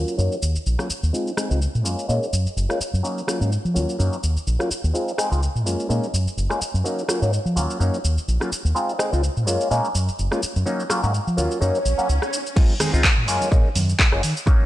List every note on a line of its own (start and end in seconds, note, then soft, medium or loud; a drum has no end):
0.00 0.15 F#3 medium
0.00 0.16 A#3 medium
0.00 0.16 C#4 medium
0.00 0.16 F4 medium
0.08 shaker soft
0.17 0.27 F#2 medium
0.17 0.35 F#3 medium
0.17 0.35 A#3 medium
0.17 0.35 C#4 medium
0.17 0.35 D#4 medium
0.17 shaker soft
0.32 shaker soft
0.42 0.55 D#2 medium
0.42 shaker medium
0.56 muted fingered electric bass stroke soft
0.56 shaker soft
0.66 0.75 A#1 medium
0.66 shaker soft
0.79 0.88 F#3 medium
0.79 0.88 A#3 medium
0.79 0.88 C#4 medium
0.79 0.88 F4 medium
0.79 cross-stick medium
0.79 shaker soft
0.90 muted fingered electric bass stroke soft
0.90 shaker medium
1.03 1.10 D#2 medium
1.03 shaker soft
1.13 1.30 G#3 medium
1.13 1.30 C4 medium
1.13 1.31 D#4 medium
1.13 1.31 F4 medium
1.13 shaker soft
1.27 shaker soft
1.37 1.48 G#3 medium
1.37 1.48 C4 medium
1.37 1.49 D#4 medium
1.37 1.49 G#4 medium
1.37 cross-stick medium
1.37 shaker medium
1.50 1.66 C#2 medium
1.50 1.59 G#3 medium
1.50 1.59 C4 medium
1.50 1.60 D#4 medium
1.50 1.60 F4 medium
1.50 shaker soft
1.62 shaker soft
1.75 1.85 A#2 medium
1.75 shaker soft
1.84 1.94 F#2 medium
1.84 2.06 G#3 medium
1.84 2.06 A#3 medium
1.84 2.06 C#4 medium
1.84 2.06 F4 medium
1.84 shaker medium
1.99 shaker soft
2.08 2.18 A#2 medium
2.08 2.26 G#3 medium
2.08 2.26 A#3 medium
2.08 2.26 C#4 medium
2.08 2.26 D#4 medium
2.08 shaker soft
2.23 shaker soft
2.33 2.45 F#2 medium
2.33 shaker medium
2.46 muted fingered electric bass stroke soft
2.46 shaker soft
2.56 2.65 F#1 medium
2.56 shaker soft
2.69 2.78 G#3 medium
2.69 2.79 A#3 medium
2.69 2.79 C#4 medium
2.69 2.79 F4 medium
2.69 cross-stick medium
2.69 shaker soft
2.80 muted fingered electric bass stroke soft
2.80 shaker medium
2.93 3.00 F#2 medium
2.93 shaker soft
3.03 3.21 F#3 medium
3.03 3.21 A#3 medium
3.03 3.21 C#4 medium
3.03 3.21 D#4 loud
3.03 shaker soft
3.18 shaker soft
3.27 3.39 F#3 medium
3.27 3.39 A#3 medium
3.27 3.39 C#4 medium
3.27 3.39 F4 medium
3.27 cross-stick medium
3.27 shaker medium
3.40 3.56 G#2 medium
3.40 3.50 F#3 medium
3.40 3.50 A#3 medium
3.40 3.50 C#4 medium
3.40 3.50 D#4 medium
3.40 shaker soft
3.52 shaker soft
3.65 3.77 F3 medium
3.65 shaker soft
3.74 3.84 D#2 medium
3.74 3.96 F#3 medium
3.74 3.96 A#3 medium
3.74 3.96 C#4 medium
3.74 3.97 F4 medium
3.74 shaker medium
3.89 shaker soft
3.99 4.08 F#2 medium
3.99 4.16 F#3 medium
3.99 4.16 A#3 medium
3.99 4.16 C#4 medium
3.99 4.16 D#4 medium
3.99 shaker soft
4.13 shaker soft
4.23 4.36 D#2 medium
4.23 shaker medium
4.36 muted fingered electric bass stroke soft
4.36 shaker soft
4.47 4.56 A#1 medium
4.47 shaker soft
4.59 4.69 F#3 medium
4.59 4.69 A#3 medium
4.59 4.69 C#4 medium
4.59 4.69 F4 medium
4.59 cross-stick medium
4.59 shaker soft
4.71 muted fingered electric bass stroke soft
4.71 shaker medium
4.84 4.91 D#2 medium
4.84 shaker soft
4.94 5.11 G#3 medium
4.94 5.11 C4 medium
4.94 5.11 D#4 medium
4.94 5.12 F4 medium
4.94 shaker soft
5.08 shaker soft
5.18 5.29 G#3 medium
5.18 5.29 C4 medium
5.18 5.30 D#4 medium
5.18 5.30 G#4 medium
5.18 cross-stick medium
5.18 shaker medium
5.31 5.46 C#2 medium
5.31 5.40 G#3 medium
5.31 5.40 C4 medium
5.31 5.41 D#4 medium
5.31 5.41 F4 medium
5.31 shaker soft
5.43 shaker soft
5.55 5.66 A#2 medium
5.55 shaker soft
5.66 5.75 F#2 medium
5.66 5.87 G#3 medium
5.66 5.87 A#3 medium
5.66 5.87 C#4 medium
5.66 5.87 F4 medium
5.66 shaker medium
5.80 shaker soft
5.89 5.98 A#2 medium
5.89 6.06 G#3 medium
5.89 6.07 A#3 medium
5.89 6.07 C#4 medium
5.89 6.07 D#4 medium
5.89 shaker soft
6.03 shaker soft
6.13 6.26 F#2 medium
6.13 shaker medium
6.26 muted fingered electric bass stroke soft
6.26 shaker soft
6.37 6.46 F#1 medium
6.37 shaker soft
6.50 6.59 G#3 medium
6.50 6.59 A#3 medium
6.50 6.59 C#4 medium
6.50 6.60 F4 medium
6.50 cross-stick medium
6.50 shaker soft
6.61 muted fingered electric bass stroke soft
6.61 shaker medium
6.74 6.81 F#2 medium
6.74 shaker soft
6.84 7.02 F#3 medium
6.84 7.02 A#3 medium
6.84 7.02 C#4 medium
6.84 7.02 D#4 medium
6.84 shaker soft
6.99 shaker soft
7.08 7.20 F#3 medium
7.08 7.20 A#3 medium
7.08 7.20 C#4 medium
7.08 7.20 F4 medium
7.08 cross-stick medium
7.08 shaker medium
7.22 7.37 G#2 medium
7.22 7.31 F#3 medium
7.22 7.31 A#3 medium
7.22 7.31 C#4 medium
7.22 7.31 D#4 medium
7.22 shaker soft
7.33 shaker soft
7.45 7.58 F3 medium
7.45 shaker soft
7.56 7.65 D#2 medium
7.56 7.77 F#3 medium
7.56 7.78 A#3 medium
7.56 7.78 C#4 medium
7.56 7.78 F4 medium
7.56 shaker medium
7.70 shaker soft
7.80 7.89 F#2 medium
7.80 7.97 F#3 medium
7.80 7.97 A#3 medium
7.80 7.97 C#4 medium
7.80 7.97 D#4 medium
7.80 shaker soft
7.94 shaker soft
8.04 8.17 D#2 medium
8.04 shaker medium
8.17 muted fingered electric bass stroke soft
8.17 shaker soft
8.28 8.37 A#1 medium
8.28 shaker soft
8.40 8.50 F#3 medium
8.40 8.50 A#3 medium
8.40 8.50 C#4 medium
8.40 8.50 F4 medium
8.40 cross-stick medium
8.40 shaker soft
8.52 muted fingered electric bass stroke soft
8.52 shaker medium
8.65 8.72 D#2 medium
8.65 shaker soft
8.75 8.92 G#3 medium
8.75 8.92 C4 medium
8.75 8.93 D#4 medium
8.75 8.93 F4 medium
8.75 shaker soft
8.89 shaker soft
8.99 9.10 G#3 medium
8.99 9.10 C4 medium
8.99 9.10 D#4 medium
8.99 9.11 G#4 medium
8.99 cross-stick medium
8.99 shaker medium
9.12 9.28 C#2 medium
9.12 9.21 G#3 medium
9.12 9.22 C4 medium
9.12 9.22 D#4 medium
9.12 9.22 F4 medium
9.12 shaker soft
9.24 shaker soft
9.37 9.47 A#2 medium
9.37 shaker soft
9.47 9.56 F#2 medium
9.47 9.68 G#3 medium
9.47 9.68 A#3 medium
9.47 9.68 C#4 medium
9.47 9.68 F4 medium
9.47 shaker medium
9.61 shaker soft
9.70 9.80 A#2 medium
9.70 9.88 G#3 medium
9.70 9.88 A#3 medium
9.70 9.88 C#4 medium
9.70 9.88 D#4 loud
9.70 shaker soft
9.85 shaker soft
9.95 10.08 F#2 medium
9.95 shaker medium
10.08 muted fingered electric bass stroke soft
10.08 shaker soft
10.19 10.27 F#1 medium
10.19 shaker soft
10.31 10.40 G#3 medium
10.31 10.41 A#3 medium
10.31 10.41 C#4 medium
10.31 10.41 F4 medium
10.31 cross-stick medium
10.31 shaker soft
10.43 muted fingered electric bass stroke soft
10.43 shaker medium
10.56 10.63 F#2 medium
10.56 shaker soft
10.66 10.83 F#3 medium
10.66 10.83 A#3 medium
10.66 10.83 C#4 medium
10.66 10.83 D#4 loud
10.66 shaker soft
10.80 shaker soft
10.90 11.01 F#3 medium
10.90 11.01 A#3 medium
10.90 11.01 C#4 medium
10.90 11.01 F4 medium
10.90 cross-stick medium
10.90 shaker medium
11.03 11.18 G#2 medium
11.03 11.12 F#3 medium
11.03 11.12 A#3 medium
11.03 11.12 C#4 medium
11.03 11.12 D#4 medium
11.03 shaker soft
11.14 shaker soft
11.27 11.39 F3 medium
11.27 shaker soft
11.37 11.46 D#2 medium
11.37 11.58 F#3 medium
11.37 11.59 A#3 medium
11.37 11.59 C#4 medium
11.37 11.59 F4 medium
11.37 shaker medium
11.51 shaker soft
11.61 11.70 F#2 medium
11.61 11.78 F#3 medium
11.61 11.78 A#3 medium
11.61 11.78 C#4 medium
11.61 11.78 D#4 loud
11.61 swell medium
11.61 shaker soft
11.75 shaker soft
11.85 11.94 A#1 medium
11.85 shaker medium
11.98 12.07 F#3 medium
11.98 12.07 A#3 medium
11.98 12.07 C#4 medium
11.98 12.07 F#4 medium
11.98 shaker soft
12.09 12.18 C#2 medium
12.09 shaker soft
12.22 cross-stick medium
12.22 shaker soft
12.33 shaker medium
12.46 shaker soft
12.56 12.73 G#3 medium
12.56 12.73 C4 medium
12.56 12.74 D#4 medium
12.56 12.74 F4 loud
12.56 kick loud
12.56 crash loud
12.56 high conga medium
12.56 shaker soft
12.70 shaker soft
12.80 12.91 G#3 medium
12.80 12.92 C4 medium
12.80 12.92 D#4 medium
12.80 12.92 G#4 loud
12.80 cross-stick medium
12.80 open hi-hat loud
12.80 low conga loud
12.80 shaker loud
12.80 shaker medium
12.93 13.08 C#2 loud
12.93 13.02 G#3 medium
12.93 13.02 C4 medium
12.93 13.03 D#4 medium
12.93 13.03 F4 medium
12.93 shaker soft
13.04 kick loud
13.04 clap loud
13.04 shaker soft
13.18 13.28 A#2 medium
13.18 shaker soft
13.28 13.37 F#2 medium
13.28 13.49 G#3 medium
13.28 13.49 A#3 medium
13.28 13.49 C#4 medium
13.28 13.49 F4 medium
13.28 open hi-hat medium
13.28 shaker loud
13.28 shaker medium
13.41 high conga medium
13.41 shaker soft
13.51 13.61 A#2 loud
13.51 13.69 G#3 medium
13.51 13.69 A#3 medium
13.51 13.69 C#4 medium
13.51 13.69 D#4 loud
13.51 kick loud
13.51 shaker medium
13.51 shaker soft
13.65 shaker soft
13.75 13.92 F#2 medium
13.75 open hi-hat loud
13.75 high conga medium
13.75 low conga medium
13.75 shaker medium
13.88 shaker soft
13.99 kick loud
13.99 clap loud
13.99 shaker soft
13.99 shaker medium
14.12 14.20 F#1 loud
14.12 14.21 G#3 medium
14.12 14.21 A#3 medium
14.12 14.21 C#4 medium
14.12 14.22 F4 medium
14.12 cross-stick medium
14.12 shaker soft
14.23 14.32 D#3 medium
14.23 open hi-hat medium
14.23 shaker loud
14.23 shaker medium
14.37 shaker soft
14.46 14.64 F#3 loud
14.46 14.64 A#3 medium
14.46 14.64 C#4 medium
14.46 14.64 D#4 loud
14.46 kick loud
14.46 high conga medium
14.46 shaker medium
14.46 shaker soft
14.60 shaker soft